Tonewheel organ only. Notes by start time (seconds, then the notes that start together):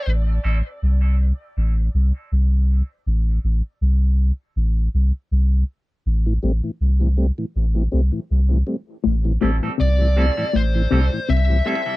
6.26 A2 E3
6.43 G3 A3 C4
6.64 A2 E3
7.01 A2 E3
7.17 G3 A3 C4
7.38 A2 E3
7.75 A2 E3
7.92 G3 A3 C4
8.12 A2 E3
8.51 A2 E3
8.67 G3 A3 C4
9.25 A2 E3
9.41 G3 A3 C4
9.63 A2 E3
10.00 A2 E3
10.16 G3 A3 C4
10.38 A2 E3
10.75 A2 E3
10.92 G3 A3 C4
11.13 A2 E3
11.49 A2 E3
11.65 G3 A3 C4